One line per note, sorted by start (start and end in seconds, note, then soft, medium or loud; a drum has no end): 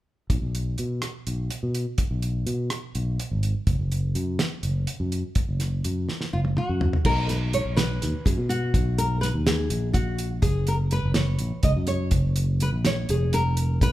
0.30 0.41 B1 medium
0.30 kick medium
0.30 closed hi-hat medium
0.42 0.75 B1 medium
0.55 closed hi-hat soft
0.78 1.01 B2 medium
0.78 closed hi-hat soft
1.02 cross-stick medium
1.02 closed hi-hat medium
1.27 1.49 B1 medium
1.27 closed hi-hat soft
1.50 closed hi-hat medium
1.63 1.85 B2 medium
1.75 closed hi-hat soft
1.98 kick medium
1.98 closed hi-hat medium
2.11 2.44 B1 medium
2.22 closed hi-hat soft
2.46 2.69 B2 medium
2.46 closed hi-hat soft
2.70 cross-stick medium
2.70 closed hi-hat medium
2.95 3.17 B1 medium
2.95 closed hi-hat soft
3.20 closed hi-hat medium
3.31 3.53 G#1 medium
3.43 closed hi-hat soft
3.67 3.78 F#1 medium
3.67 kick medium
3.67 closed hi-hat medium
3.79 4.13 F#1 medium
3.92 closed hi-hat soft
4.15 4.37 F#2 medium
4.15 closed hi-hat soft
4.39 snare medium
4.39 closed hi-hat medium
4.63 4.85 F#1 medium
4.63 closed hi-hat soft
4.87 closed hi-hat medium
5.00 5.22 F#2 medium
5.12 closed hi-hat soft
5.35 kick medium
5.35 closed hi-hat medium
5.49 5.82 F#1 medium
5.60 snare soft
5.60 closed hi-hat soft
5.84 6.07 F#2 medium
5.84 closed hi-hat medium
6.09 snare soft
6.21 snare soft
6.33 6.55 F#1 medium
6.33 6.40 F4 medium
6.45 high tom soft
6.57 7.05 F#4 medium
6.57 mid tom medium
6.69 6.91 F#2 medium
6.81 floor tom medium
6.93 floor tom medium
7.05 7.62 B1 medium
7.05 7.30 A#4 medium
7.05 kick medium
7.05 crash medium
7.29 7.36 B4 medium
7.29 snare soft
7.29 closed hi-hat soft
7.53 7.76 C#5 medium
7.53 closed hi-hat soft
7.66 7.99 B1 medium
7.76 8.27 B4 medium
7.76 snare medium
7.76 closed hi-hat medium
8.02 8.13 D#2 medium
8.02 snare soft
8.02 closed hi-hat medium
8.25 8.37 F#2 medium
8.25 8.32 G#4 medium
8.25 kick medium
8.25 closed hi-hat medium
8.38 8.71 B2 medium
8.49 8.99 F#4 medium
8.49 closed hi-hat soft
8.74 9.30 B1 medium
8.74 kick medium
8.74 closed hi-hat medium
8.98 9.21 A#4 medium
8.98 closed hi-hat medium
9.21 9.28 B4 medium
9.21 snare soft
9.21 closed hi-hat medium
9.34 9.67 D#2 medium
9.47 9.93 G#4 medium
9.47 snare medium
9.47 closed hi-hat medium
9.70 10.39 A#1 medium
9.70 closed hi-hat medium
9.93 10.28 F#4 medium
9.93 kick medium
9.93 closed hi-hat medium
10.18 closed hi-hat soft
10.42 10.99 F#1 medium
10.42 10.67 G#4 medium
10.42 kick medium
10.42 closed hi-hat medium
10.67 10.75 A#4 medium
10.67 closed hi-hat medium
10.91 11.15 B4 medium
10.91 closed hi-hat soft
11.03 11.37 F#1 medium
11.14 11.64 C#5 medium
11.14 snare medium
11.14 closed hi-hat medium
11.39 11.51 A#1 medium
11.39 closed hi-hat soft
11.63 11.75 C#2 medium
11.63 11.71 D#5 medium
11.63 kick medium
11.63 closed hi-hat medium
11.76 12.09 F#2 medium
11.87 12.33 C#5 medium
11.87 closed hi-hat medium
12.11 12.68 F#1 medium
12.11 kick medium
12.11 closed hi-hat medium
12.36 closed hi-hat medium
12.60 12.69 B4 medium
12.60 closed hi-hat soft
12.72 13.06 A#1 medium
12.85 13.10 C#5 medium
12.85 snare medium
12.85 closed hi-hat medium
13.09 13.78 F1 medium
13.09 13.34 G#4 medium
13.09 closed hi-hat medium
13.33 13.82 A#4 medium
13.33 closed hi-hat medium
13.57 closed hi-hat medium
13.81 13.92 B1 medium
13.81 13.92 B4 medium
13.81 kick medium
13.81 closed hi-hat medium